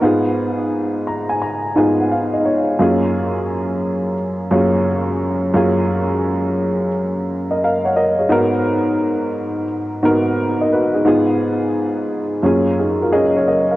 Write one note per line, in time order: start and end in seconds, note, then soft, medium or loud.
0.01 1.35 G#2 medium
0.01 1.35 B3 medium
0.01 1.36 D#4 medium
0.01 1.36 F4 medium
0.01 1.37 G#4 medium
1.07 1.28 A#5 medium
1.29 1.40 G#5 medium
1.42 1.73 A#5 medium
1.76 2.75 G#2 medium
1.76 2.75 B3 medium
1.76 2.76 D#4 medium
1.76 2.76 F4 medium
1.76 2.77 G#4 medium
1.76 1.97 G#5 medium
1.99 2.10 F#5 medium
2.11 2.32 F5 medium
2.34 2.44 D#5 medium
2.45 2.77 C#5 medium
2.79 4.12 F#2 medium
2.79 4.12 A#3 medium
2.79 4.12 C#4 medium
2.79 4.13 F4 medium
2.79 4.13 G#4 loud
4.51 5.51 F#2 medium
4.51 5.51 A#3 medium
4.51 5.51 C#4 medium
4.51 5.52 F4 medium
4.51 5.52 G#4 medium
5.54 6.87 F#2 medium
5.54 6.87 A#3 medium
5.54 6.88 C#4 medium
5.54 6.88 F4 medium
5.54 6.88 G#4 loud
7.51 7.62 A#4 soft
7.51 7.62 D#5 medium
7.64 7.84 A#4 medium
7.64 7.84 F5 medium
7.85 7.96 C#5 medium
7.85 7.96 F#5 medium
7.96 8.18 A#4 medium
7.96 8.17 D#5 medium
8.18 8.52 G#4 medium
8.18 8.51 C#5 medium
8.29 9.62 G#2 medium
8.29 9.63 B3 medium
8.29 9.63 D#4 medium
8.29 9.64 F#4 medium
8.29 9.64 A#4 medium
10.02 11.02 G#2 medium
10.02 11.03 B3 medium
10.02 10.38 D#4 medium
10.02 10.38 F#4 medium
10.02 10.39 A#4 medium
10.61 10.73 A#4 soft
10.61 10.72 D#5 medium
10.73 10.94 F#4 medium
10.73 10.94 B4 medium
10.94 11.05 D#4 soft
10.94 11.06 G#4 medium
11.05 12.38 G#2 medium
11.05 12.39 B3 medium
11.05 12.39 D#4 medium
11.05 12.39 F4 medium
11.05 12.40 G#4 medium
12.43 12.77 F#2 medium
12.43 12.77 A#3 medium
12.43 12.77 C#4 medium
12.43 12.78 F4 medium
12.43 12.78 G#4 medium
12.79 13.01 D#4 soft
12.79 13.00 G#4 medium
13.02 13.14 F4 soft
13.02 13.12 A#4 medium
13.12 13.76 C#4 medium
13.12 13.36 G#4 medium
13.12 13.35 A#4 medium
13.12 13.35 D#5 medium
13.36 13.48 G#4 medium
13.36 13.48 C#5 medium
13.48 13.69 A#4 medium
13.48 13.69 D#5 medium
13.71 13.76 A#4 soft
13.71 13.76 F5 medium